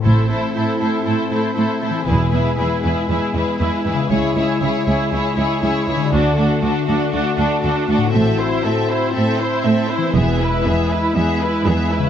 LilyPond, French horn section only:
\new Staff \with { instrumentName = "French horn section" } { \time 4/4 \key a \dorian \tempo 4 = 119 << { c'1 | b1 | e'1 | fis'1~ |
fis'2 e'2~ | e'1 | } \\ { a1 | gis1~ | gis1 | a1 |
c'1 | gis1 | } >> }